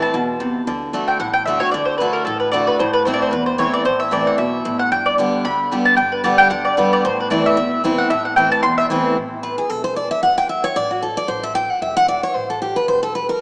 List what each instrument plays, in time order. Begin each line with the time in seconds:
Already playing: steel-string acoustic guitar A2 E3 A3 C4 E4
0.02 mandolin A5
0.14 upright bass E2, steel-string acoustic guitar B2
0.40 steel-string acoustic guitar C3
0.67 upright bass D2, steel-string acoustic guitar D3
0.93 steel-string acoustic guitar D3 A3 D4 F#4
1.08 mandolin G5
1.20 upright bass A1, steel-string acoustic guitar A2, mandolin F#5
1.33 mandolin G5
1.45 steel-string acoustic guitar D3 A3 D4 F#4, mandolin E5
1.60 steel-string acoustic guitar D4 F#4, mandolin C#5
1.71 upright bass D2, steel-string acoustic guitar D3, mandolin D5
1.85 mandolin C5
1.98 steel-string acoustic guitar D3 A3 D4 F#4, mandolin B4
2.13 mandolin A#4
2.25 upright bass A1, steel-string acoustic guitar A2, mandolin A4
2.40 mandolin B4
2.52 steel-string acoustic guitar D3 A3 D4 F#4, mandolin D5
2.67 mandolin B4
2.79 upright bass A1, steel-string acoustic guitar A2, mandolin C5
2.93 mandolin B4
3.05 steel-string acoustic guitar E3 A3 C4 E4, mandolin C5
3.14 mandolin D5
3.22 mandolin C5
3.31 upright bass E1, steel-string acoustic guitar E2, mandolin B4
3.46 mandolin C5
3.58 steel-string acoustic guitar E3 A3 C4 E4, mandolin C#5
3.73 mandolin D5
3.85 upright bass A1, steel-string acoustic guitar A2, mandolin C5
4.00 mandolin E5
4.11 steel-string acoustic guitar E3 A3 C4 E4, mandolin D5
4.27 mandolin F#5
4.38 upright bass B1, steel-string acoustic guitar B2, mandolin E5
4.65 upright bass A1, steel-string acoustic guitar A2
4.79 mandolin F#5
4.92 upright bass G1, steel-string acoustic guitar G2, mandolin G5
5.06 mandolin D5
5.18 steel-string acoustic guitar D3 G3 B3 G4
5.45 upright bass D2, steel-string acoustic guitar D3, mandolin B5
5.71 steel-string acoustic guitar D3 G3 B3 G4
5.85 mandolin A5
5.96 upright bass G1, steel-string acoustic guitar G2, mandolin G5
6.12 mandolin B4
6.24 steel-string acoustic guitar D3 G3 B3 G4, mandolin D5
6.38 mandolin G5
6.50 upright bass D2, steel-string acoustic guitar D3, mandolin F#5
6.65 mandolin D5
6.77 steel-string acoustic guitar D3 G3 B3 G4, mandolin B4
6.93 mandolin D5
7.04 upright bass A1, steel-string acoustic guitar A2, mandolin C5
7.20 mandolin B4
7.30 steel-string acoustic guitar E3 A3 C4 E4, mandolin D5
7.46 mandolin E5
7.57 upright bass E1, steel-string acoustic guitar E2
7.84 steel-string acoustic guitar E3 A3 C4 E4
7.98 mandolin F#5
8.10 upright bass A1, steel-string acoustic guitar A2, mandolin E5
8.25 mandolin F#5
8.36 steel-string acoustic guitar E3 A3 C4 E4, mandolin G5
8.52 mandolin A5
8.63 upright bass E1, steel-string acoustic guitar E2, mandolin C6
8.78 mandolin E5
8.90 steel-string acoustic guitar E3 A3 C4 E4
9.17 upright bass A1
9.43 steel-string acoustic guitar B4
9.58 steel-string acoustic guitar G#4
9.69 upright bass E1, steel-string acoustic guitar A4
9.84 steel-string acoustic guitar C5
9.96 steel-string acoustic guitar D5
10.11 steel-string acoustic guitar E5
10.23 upright bass D2, steel-string acoustic guitar F#5
10.38 steel-string acoustic guitar G5
10.49 steel-string acoustic guitar E5
10.64 steel-string acoustic guitar C#5
10.76 upright bass A1, steel-string acoustic guitar D5
10.91 steel-string acoustic guitar F#4
11.02 steel-string acoustic guitar A4
11.17 steel-string acoustic guitar D5
11.28 upright bass A1, steel-string acoustic guitar C5
11.43 steel-string acoustic guitar E5
11.55 steel-string acoustic guitar G5
11.71 steel-string acoustic guitar F#5
11.82 upright bass E1, steel-string acoustic guitar E5
11.97 steel-string acoustic guitar F#5
12.08 steel-string acoustic guitar D5
12.23 steel-string acoustic guitar C#5
12.35 upright bass A1, steel-string acoustic guitar C5
12.50 steel-string acoustic guitar A4
12.62 steel-string acoustic guitar G4
12.76 steel-string acoustic guitar B4
12.88 upright bass E1, steel-string acoustic guitar C5
13.03 steel-string acoustic guitar A4
13.15 steel-string acoustic guitar B4
13.29 steel-string acoustic guitar A#4